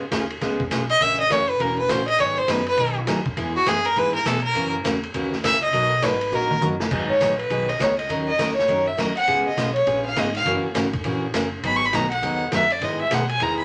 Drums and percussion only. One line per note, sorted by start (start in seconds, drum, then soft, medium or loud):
0.12 kick soft
0.12 snare medium
0.12 hi-hat pedal soft
0.12 ride medium
0.30 ride soft
0.41 kick soft
0.41 snare soft
0.41 ride medium
0.60 kick medium
0.71 kick soft
0.71 snare medium
0.71 hi-hat pedal medium
0.71 ride medium
0.89 ride soft
1.00 kick soft
1.00 ride medium
1.30 kick soft
1.30 snare medium
1.30 hi-hat pedal medium
1.30 ride medium
1.60 kick soft
1.60 ride medium
1.89 kick soft
1.89 snare medium
1.89 hi-hat pedal medium
1.89 ride medium
2.08 ride medium
2.18 kick soft
2.18 ride medium
2.48 kick soft
2.48 snare medium
2.48 hi-hat pedal medium
2.48 ride medium
2.66 ride medium
2.77 kick soft
2.77 ride medium
3.07 kick soft
3.07 snare medium
3.07 hi-hat pedal medium
3.07 ride medium
3.26 kick medium
3.37 kick soft
3.37 ride medium
3.66 kick soft
3.66 snare medium
3.66 hi-hat pedal medium
3.66 ride medium
3.85 ride soft
3.96 kick soft
3.96 ride medium
4.25 kick soft
4.25 snare medium
4.25 hi-hat pedal medium
4.25 ride medium
4.55 kick soft
4.55 ride medium
4.85 kick soft
4.85 snare medium
4.85 hi-hat pedal medium
4.85 ride medium
5.03 ride soft
5.14 kick soft
5.14 ride medium
5.33 snare soft
5.44 kick soft
5.44 snare medium
5.44 hi-hat pedal medium
5.44 ride medium
5.62 ride soft
5.73 kick soft
5.73 ride medium
6.02 kick soft
6.02 snare medium
6.02 hi-hat pedal medium
6.02 ride medium
6.21 ride medium
6.51 mid tom medium
6.61 hi-hat pedal medium
6.61 mid tom medium
6.80 snare medium
6.91 kick medium
6.91 crash medium
7.21 kick soft
7.21 snare medium
7.21 hi-hat pedal medium
7.21 ride medium
7.39 ride soft
7.50 kick soft
7.50 ride medium
7.69 ride soft
7.80 kick soft
7.80 snare medium
7.80 hi-hat pedal medium
7.80 ride medium
7.99 ride medium
8.09 kick soft
8.09 ride medium
8.39 kick soft
8.39 snare medium
8.39 hi-hat pedal medium
8.39 ride medium
8.49 snare soft
8.59 snare soft
8.69 kick soft
8.69 ride medium
8.98 kick soft
8.98 snare medium
8.98 hi-hat pedal medium
8.98 ride medium
9.17 ride soft
9.28 kick soft
9.28 ride medium
9.57 kick soft
9.57 snare medium
9.57 hi-hat pedal medium
9.57 ride medium
9.76 ride medium
9.87 kick soft
9.87 ride medium
10.16 kick soft
10.16 snare medium
10.16 hi-hat pedal medium
10.16 ride medium
10.35 ride medium
10.46 kick soft
10.46 ride medium
10.75 kick soft
10.75 snare medium
10.75 hi-hat pedal medium
10.75 ride medium
10.93 kick medium
10.93 ride medium
11.04 kick soft
11.04 ride medium
11.34 kick soft
11.34 snare medium
11.34 hi-hat pedal medium
11.34 ride medium
11.63 kick soft
11.63 ride medium
11.93 kick soft
11.93 snare medium
11.93 hi-hat pedal medium
11.93 ride medium
12.11 ride medium
12.23 kick soft
12.23 ride medium
12.52 kick soft
12.52 snare medium
12.52 hi-hat pedal medium
12.52 ride medium
12.70 ride medium
12.81 kick soft
12.81 ride medium
13.11 kick soft
13.11 snare medium
13.11 hi-hat pedal medium
13.11 ride medium
13.29 ride medium
13.40 kick soft
13.40 ride medium